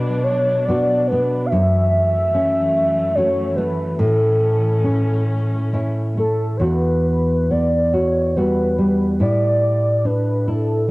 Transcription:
Already playing: B2 F#3 D4 F#4 B4
0.23 C#5
0.65 B3 D5
0.69 D4 F#4
1.07 B4
1.12 B3
1.46 E5 F#5
1.52 F#2 E3 A3
2.35 C#4
3.15 A3 C#4 F#4 C#5
3.56 A3 B4
3.98 A2 C#4 A4
4.84 C#4
5.73 A3 C#4 E4
6.17 A3 A4
6.57 E2 C#5
6.61 F#4 B4
7.50 B3 D5
7.93 F#4 C#5
8.36 G3 B3 F#4 B4
8.78 G3
9.20 A2 E4 D5
10.05 D4 B4
10.48 E4 A4

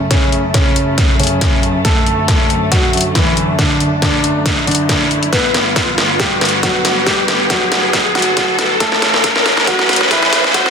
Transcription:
Already playing: F#2 C#3 A3, riser
0.11 C#3 C#4, kick, snare, closed hi-hat
0.32 closed hi-hat
0.54 C#3 C#4, kick, snare, closed hi-hat
0.76 closed hi-hat
0.98 kick, snare, closed hi-hat
1.19 C#3 C#4, closed hi-hat
1.23 closed hi-hat
1.27 closed hi-hat
1.41 kick, snare, closed hi-hat
1.63 closed hi-hat
1.85 D3 A3 A4, kick, snare, closed hi-hat
2.06 closed hi-hat
2.28 kick, snare, closed hi-hat
2.50 closed hi-hat
2.72 F#3 F#4, kick, snare, closed hi-hat
2.93 closed hi-hat
2.97 closed hi-hat
3.01 closed hi-hat
3.15 E3 E4, kick, snare, closed hi-hat
3.37 closed hi-hat
3.59 D3 D4, kick, snare, closed hi-hat
3.80 closed hi-hat
4.02 D3 D4, kick, snare, closed hi-hat
4.24 closed hi-hat
4.46 kick, snare, closed hi-hat
4.67 D3 D4, closed hi-hat
4.71 closed hi-hat
4.75 closed hi-hat
4.89 kick, snare, closed hi-hat
5.11 closed hi-hat
5.23 closed hi-hat
5.32 G2 D3 B3 B4, kick, snare, closed hi-hat
5.54 snare, closed hi-hat
5.76 kick, snare, closed hi-hat
5.98 snare, closed hi-hat
6.19 G3 G4, kick, snare, closed hi-hat
6.41 snare, closed hi-hat
6.45 closed hi-hat
6.49 closed hi-hat
6.63 F#3 F#4, kick, snare, closed hi-hat
6.85 snare, open hi-hat
7.06 G3 G4, kick, snare, closed hi-hat
7.28 snare, closed hi-hat
7.50 F#3 F#4, kick, snare, closed hi-hat
7.72 snare, closed hi-hat
7.93 kick, snare, closed hi-hat
8.15 F#3 F#4, snare, closed hi-hat
8.19 closed hi-hat
8.22 closed hi-hat
8.37 kick, snare, closed hi-hat
8.59 snare, open hi-hat
8.80 A2 E3 A3 C#4 A4, kick, snare, closed hi-hat
8.92 snare
9.02 snare, closed hi-hat
9.14 snare
9.24 kick, snare, closed hi-hat
9.36 snare
9.46 snare, closed hi-hat
9.57 snare
9.67 F#3 F#4, kick, snare, closed hi-hat
9.79 snare
9.89 snare, closed hi-hat
9.93 closed hi-hat
9.96 closed hi-hat
10.01 snare
10.11 E3 E4, kick, snare, closed hi-hat
10.23 snare
10.33 snare, open hi-hat
10.44 snare
10.54 F#3 F#4, kick, snare, closed hi-hat
10.66 snare

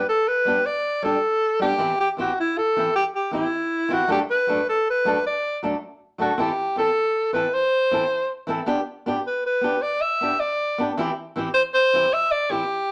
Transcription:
0.09 A4
0.28 B4
0.45 G3 B3 D4 G4
0.66 D5
1.02 G3 D4 G4 A4
1.59 G3 B3 D4 G4
1.78 E3 C4 E4, muted steel-string acoustic guitar stroke
2.00 G4
2.17 E3 C4 E4 F#4 G4
2.40 E4
2.58 A4
2.76 E3 C4 E4 G4
2.96 G4
3.15 G4
3.31 E3 C4 E4 G4
3.89 E3 C4 E4 F#4 G4
4.08 F#3 A3 D4 A4
4.12 G4
4.30 B4
4.47 F#3 A3 D4 A4
4.69 A4
4.90 B4
5.05 F#3 A3 D4 A4
5.26 D5
5.63 F#3 A3 D4 A4
6.18 F#3 A3 D4 F#4 A4
6.38 E3 C4 E4 G4 A4
6.76 E3 C4 E4 A4
7.33 E3 C4 E4 A4 B4
7.54 C5
7.91 E3 C4 E4 A4
8.47 E3 C4 E4 A4
8.66 B3 D4 G4
9.06 B3 D4 G4
9.27 B4
9.46 B4
9.61 B3 D4 G4
9.82 D5
10.01 E5
10.21 B3 D4 G4
10.40 D5
10.78 B3 D4 G4
10.97 E3 C4 E4 G4
11.36 E3 C4 E4 G4
11.54 C5
11.74 C5
11.93 E3 C4 E4 G4
12.13 E5
12.31 D5
12.50 E3 C4 E4 G4

